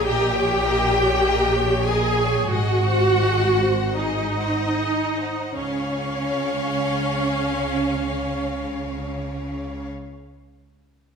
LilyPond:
<<
  \new Staff \with { instrumentName = "Violin section" } { \time 4/4 \key des \major \tempo 4 = 42 g''4. aes''8 ges''4 ees''4 | des''1 | }
  \new Staff \with { instrumentName = "Violin section" } { \time 4/4 \key des \major <bes' ees''>16 <des'' g''>16 <bes' ees''>16 <des'' g''>16 <bes' ees''>16 <des'' g''>16 <bes' ees''>16 <des'' g''>16 <aes' ees''>16 <c'' ges''>16 <aes' ees''>16 <c'' ges''>16 <aes' ees''>16 <c'' ges''>16 <aes' ees''>16 <c'' ges''>16 | <des'' f''>1 | }
  \new Staff \with { instrumentName = "Viola section" } { \time 4/4 \key des \major g'4. aes'8 ges'4 ees'4 | des'1 | }
  \new Staff \with { instrumentName = "Cello section" } { \clef bass \time 4/4 \key des \major bes,2 aes,2 | des1 | }
  \new Staff \with { instrumentName = "Double bass section" } { \clef bass \time 4/4 \key des \major bes,,2 aes,,2 | des,1 | }
>>